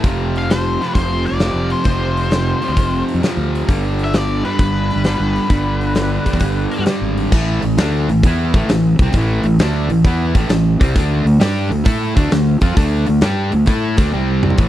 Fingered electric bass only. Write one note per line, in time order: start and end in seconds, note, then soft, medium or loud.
0.04 0.76 F1 medium
0.95 1.25 F1 medium
1.31 1.50 F1 medium
1.54 1.73 F1 medium
1.86 2.53 F1 medium
2.69 2.75 D2 medium
2.77 3.02 F1 medium
3.14 3.21 F2 medium
3.37 3.62 D2 medium
3.69 4.41 G1 medium
4.59 4.90 G1 medium
4.96 5.15 G1 medium
5.19 5.38 G1 medium
5.50 6.17 G1 medium
6.34 6.40 E2 medium
6.41 6.66 G1 medium
6.79 6.85 G2 medium
7.01 7.26 G#1 medium
7.32 7.61 A1 medium
7.63 7.77 A1 medium
7.78 8.06 D2 medium
8.08 8.22 A1 medium
8.23 8.52 E2 medium
8.54 8.67 A1 medium
8.68 8.97 A1 medium
8.99 9.13 C2 medium
9.14 9.43 A1 medium
9.44 9.58 A1 medium
9.59 9.88 D2 medium
9.89 10.03 A1 medium
10.04 10.33 E2 medium
10.35 10.49 A1 medium
10.49 10.78 A1 medium
10.81 10.95 C2 medium
10.96 11.24 D2 medium
11.25 11.39 D2 medium
11.40 11.69 G2 medium
11.70 11.85 D2 medium
11.86 12.15 A2 medium
12.17 12.31 D2 loud
12.32 12.61 D2 medium
12.61 12.76 F2 medium
12.77 13.05 D2 medium
13.09 13.22 D2 medium
13.23 13.51 G2 medium
13.53 13.67 D2 medium
13.68 13.96 A2 medium
13.98 14.12 D2 loud
14.14 14.56 C2 medium
14.58 14.69 A1 medium